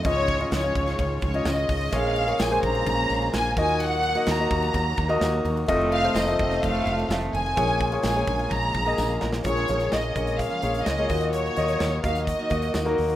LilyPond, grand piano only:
<<
  \new Staff \with { instrumentName = "Grand piano" } { \time 4/4 \key bes \minor \tempo 4 = 128 <des' f' ees''>8 r16 <des' f' ees''>8 <des' f' des''>4~ <des' f' des''>16 r16 <des' f' ees''>4 r16 | <bes aes' des''>8 r16 <bes aes' des''>8 <bes aes' c''>4. r8. <bes ges' ees''>8~ | <bes ges' ees''>8 r16 <bes ges' ees''>8 <bes ges' ees''>4~ <bes ges' ees''>16 r16 <bes ges' ees''>4 r16 | <a f' ees''>8 r16 <a f' c''>8 <a f' ees''>4. r4 r16 |
<bes aes' des''>8 r16 <bes aes' des''>8 <bes aes' des''>4~ <bes aes' des''>16 r16 <bes aes' ees''>4 r16 | <bes aes' des''>8 <bes aes' des''>8. r16 <bes aes' des''>8. r16 <bes aes' des''>8 r16 <bes aes' des''>16 <bes ges' ees''>8~ | <bes ges' ees''>16 r16 <bes ges' ees''>8. r16 <bes ges' ees''>8. r16 <bes ges' ees''>8 r16 <bes ges' bes'>8 r16 | }
  \new Staff \with { instrumentName = "Grand piano" } { \clef bass \time 4/4 \key bes \minor aes,4. r2 r8 | r2. r8 bes,8~ | bes,4 r2. | c4. r2 r8 |
<bes, f>4. r2 r8 | <bes, f>4. r2 bes,8~ | bes,4 r2. | }
>>